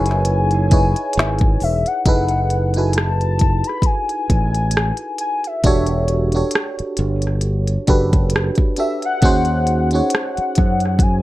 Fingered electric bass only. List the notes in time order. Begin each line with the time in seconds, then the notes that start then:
Already playing: F#1
1.17 G#1
1.62 E1
2.06 F#1
4.30 A1
5.64 E1
6.80 muted fingered electric bass stroke
6.99 G1
7.88 F#1
9.23 D#2
10.38 muted fingered electric bass stroke
10.58 F#2